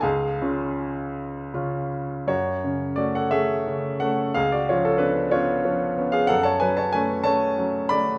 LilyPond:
<<
  \new Staff \with { instrumentName = "Grand piano" } { \time 6/8 \key fis \minor \tempo 4. = 59 <gis' eis'' gis''>2~ <gis' eis'' gis''>8 r8 | <fis' cis''>4 <fis' d''>16 <a' fis''>16 <gis' e''>4 <a' fis''>8 | <gis' eis''>16 <fis' d''>16 <eis' cis''>16 <cis' a'>16 <d' b'>8 <eis' cis''>4~ <eis' cis''>16 <gis' eis''>16 | <a' fis''>16 <cis'' a''>16 <b' gis''>16 <cis'' a''>16 <b' gis''>8 <cis'' a''>4 <d'' b''>8 | }
  \new Staff \with { instrumentName = "Grand piano" } { \time 6/8 \key fis \minor cis,8 <cis cis' eis'>4. <cis cis' eis'>4 | fis,8 <cis cis'>8 <a cis'>8 <a cis'>8 <cis cis'>8 <a cis'>8 | cis,8 <eis cis'>8 <b cis'>8 <b cis'>8 <eis cis'>8 <b cis'>8 | fis,8 <fis cis'>8 <a cis'>8 <a cis'>8 <fis cis'>8 <a cis'>8 | }
>>